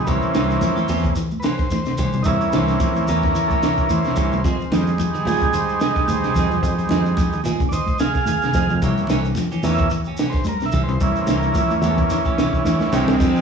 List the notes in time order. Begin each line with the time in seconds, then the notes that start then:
0.04 C2 E3 G3 A#3 B3 C#4 G4, kick, closed hi-hat, shekere
0.08 C4 C#4
0.22 muted fingered electric bass stroke, shekere
0.34 C2 E3 A#3 C#4 G4, snare, closed hi-hat, high conga, shekere
0.50 snare, closed hi-hat, shekere
0.61 F3, snare, closed hi-hat, high conga, shekere
0.76 E3 A#3 C#4 G4, closed hi-hat, high conga, shekere
0.88 E2 E3 A#3 C#4 G4, open hi-hat, high conga, low conga, shekere
1.04 C#3, kick, closed hi-hat, shekere
1.15 E3, closed hi-hat, shekere
1.31 high conga, shekere
1.40 E3 A#3 G4 B4, shekere
1.44 C3 C#4 C5, snare, closed hi-hat
1.58 kick, snare, closed hi-hat, shekere
1.70 E3, snare, closed hi-hat, high conga, shekere
1.85 C3, snare, closed hi-hat, shekere
1.98 C2 E3 A#3 C#4 G4, kick, closed hi-hat, high conga, low conga, shekere
2.13 C2 C3, shekere
2.22 C2 E3 G3 A#3 C#4 D#4, kick, closed hi-hat, shekere
2.27 E4
2.40 closed hi-hat, shekere
2.50 C2 E3 B3, snare, closed hi-hat, high conga, shekere
2.54 E3 A#3 C4 C#4 G4
2.68 snare, shekere
2.80 F3, kick, snare, closed hi-hat, high conga, shekere
2.95 E3, closed hi-hat, high conga, shekere
3.07 E2 E3 A#3 C#4 G4 A#4, closed hi-hat, high conga, low conga, shekere
3.22 C#3 A#4, kick, snare, closed hi-hat, shekere
3.35 E3, closed hi-hat, low conga, shekere
3.47 A4 A#4, kick, closed hi-hat, high conga, shekere
3.51 A#3 C#4 G4
3.62 C3 E3 A#3 C#4 G4, snare, closed hi-hat, shekere
3.77 kick, shekere
3.89 E3 C5, closed hi-hat, high conga, low conga, shekere
4.04 C3, snare, closed hi-hat, shekere
4.16 C2 E3 A#3 C#4 G4, kick, snare, closed hi-hat, low conga, shekere
4.32 C2 C3, high conga, shekere
4.44 F2 D#3 F3 G#3 C4 G#4, kick, closed hi-hat, shekere
4.60 muted fingered electric bass stroke, shekere
4.71 F2 D#3 G3 G#3 C4 D#4, muted clean electric guitar stroke, snare, closed hi-hat, high conga, shekere
4.87 closed hi-hat, shekere
4.98 F3, closed hi-hat, high conga, shekere
5.14 D#3 G#3 C4 G#4, closed hi-hat, shekere
5.25 A#2 D#3 G#3 C4 G#4, open hi-hat, high conga, low conga, shekere
5.42 C#3, kick, shekere
5.53 D#3 C5, closed hi-hat, shekere
5.69 shekere
5.81 C3 D#3 G#3 C4 G#4 D#5, snare, closed hi-hat, shekere
5.96 kick, snare, closed hi-hat, shekere
6.08 D#3 D#4 C5, closed hi-hat, high conga, low conga, shekere
6.24 C3, snare, closed hi-hat, shekere
6.34 F2 D#3 G#3 C4 G#4, kick, closed hi-hat, low conga, shekere
6.51 F2 C3, shekere
6.62 F2 F3 G3 G#3 D#4, kick, closed hi-hat, shekere
6.78 muted fingered electric bass stroke, closed hi-hat, shekere
6.89 F2 D#3 G#3 C4 G#4, snare, closed hi-hat, high conga, shekere
7.06 shekere
7.17 F3, kick, snare, closed hi-hat, high conga, shekere
7.32 D#3, closed hi-hat, shekere
7.44 A#2 D#3 G#3 C4 G#4, closed hi-hat, high conga, low conga, shekere
7.60 C#3, kick, closed hi-hat, shekere
7.69 D#3 C5 D5 D#5, low conga, shekere
7.73 closed hi-hat
7.86 kick, closed hi-hat, high conga, shekere
7.99 C3 D#3 G#3 C4 G#4 F5, snare, closed hi-hat, shekere
8.14 kick, snare, shekere
8.25 D#3 G#4 F5, closed hi-hat, high conga, shekere
8.41 C3, snare, closed hi-hat, shekere
8.53 F2 D#3 G#3 C4 G#4, kick, closed hi-hat, high conga, low conga, shekere
8.68 F2 C3, high conga, shekere
8.81 C2 E3 G3 A#3 C#4 G4, muted clean electric guitar stroke, kick, closed hi-hat, shekere
8.97 shekere
9.07 C2 E3 A#3 C#4 G4, snare, closed hi-hat, high conga, shekere
9.25 closed hi-hat, shekere
9.35 F3, snare, closed hi-hat, high conga, shekere
9.51 E3 A#3 C#4 G4, closed hi-hat, shekere
9.63 E2 E3 A#3 C#4 G4, snare, open hi-hat, high conga, low conga, shekere
9.74 E5, shekere
9.79 C#3, kick
9.90 E3, closed hi-hat, shekere
10.05 A#3 C#4 G4, shekere
10.17 C3 E3 A#3 C#4 G4, snare, closed hi-hat, shekere
10.30 C5, shekere
10.34 kick, snare, closed hi-hat
10.44 G3, closed hi-hat, high conga, shekere
10.49 A#4
10.60 C3, snare, closed hi-hat, shekere
10.66 E5
10.72 C2 E3 A#3 C#4 G4, kick, closed hi-hat, low conga, shekere
10.84 C5
10.88 C2 C3, shekere
11.00 C2 E3 G3 A#3 C#4 E4, kick, closed hi-hat, shekere
11.16 muted fingered electric bass stroke, closed hi-hat, shekere
11.21 C4
11.27 C2 E3 A#3 C#4 G4, snare, closed hi-hat, high conga, shekere
11.39 A#4, shekere
11.55 F3 E4, kick, closed hi-hat, high conga, shekere
11.70 E3, closed hi-hat, high conga, shekere
11.76 A#3
11.82 E2 E3 A#3 C#4 G4, closed hi-hat, high conga, low conga, shekere
11.91 A3
11.95 A#3, kick, closed hi-hat, shekere
11.99 C#3
12.10 E3, snare, closed hi-hat, shekere
12.25 A#3 C#4 G4, kick, closed hi-hat, high conga, shekere
12.37 C3 E3 A#3 C#4 G4, snare, closed hi-hat, shekere
12.53 kick, shekere
12.65 E3, snare, high conga, shekere
12.80 snare, high conga, shekere
12.92 C2 C3 E3 G#3 A#3 C4 C#4 G4, snare, low conga, shekere
13.07 C2 C3, snare, low conga, shekere
13.20 F2 F3, kick, snare, crash, shekere
13.34 G#3 C4 D#4 G4, shekere